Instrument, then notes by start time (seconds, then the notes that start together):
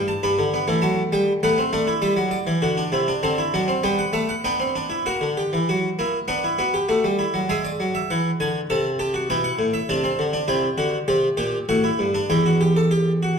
harpsichord
Already playing: G2 E4
0.08 A5
0.23 G2 D4 B5
0.39 D3
0.54 B3
0.68 E3 A3
0.82 F#3 A5
1.12 G3 G5
1.43 A3 B3 F#5
1.58 C4
1.73 A3 D4
1.87 E4
2.02 G3 E5
2.17 F#3
2.31 D5
2.47 E3
2.62 D3 F#4
2.77 D4
2.92 C3 E4
3.08 D4
3.23 D3 C4 A5
3.38 E4
3.54 F#3 D4
3.68 C4
3.83 G3 B3 G5
3.99 F#5
4.13 A3 E5
4.29 F#5
4.44 B3 D4 G5
4.60 C4
4.76 D4
4.90 E4
5.06 A#3 F#4 F#5
5.21 D3
5.37 G4
5.53 E3
5.69 F#3 F#4
5.99 A#3 E4
6.28 B3 D4 F#5
6.44 E4
6.58 B3 F#4
6.74 G4
6.89 A3 F#4
7.04 G3
7.19 E4
7.34 F#3
7.49 G#3 G#4 E5
7.65 D5
7.80 F#3
7.95 E5
8.10 E3 F#5
8.40 D3 G#5
8.70 C3 A4 A5
8.99 G4 A5
9.14 F#4
9.30 B2 E4 G5
9.44 F#5
9.59 A2
9.74 E5
9.89 C3 D4 A5
10.04 C4
10.19 D3
10.33 D4
10.48 C3 E4 G5
10.78 D3 F#4
11.08 C3 G4
11.37 A#2 G4
11.69 A2 F#4 F#5
11.84 E4
11.99 G2
12.14 D4
12.30 E2 E4 G5
12.46 F#4
12.61 G4
12.76 A4
12.91 G4
13.23 F#4